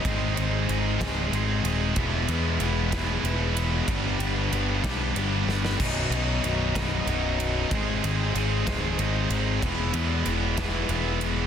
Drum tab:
CC |------------|------------|------------|x-----------|
RD |x-x-x-x-x-x-|x-x-x-x-x-x-|x-x-x-x-x---|--x-x-x-x-x-|
SD |------o-----|------o-----|------o---oo|------o-----|
BD |o-----o-----|o-----o-----|o-----o-----|o-----o-----|

CC |------------|------------|
RD |x-x-x-x-x-x-|x-x-x-x-x-x-|
SD |------o-----|------o-----|
BD |o-----o-----|o-----o-----|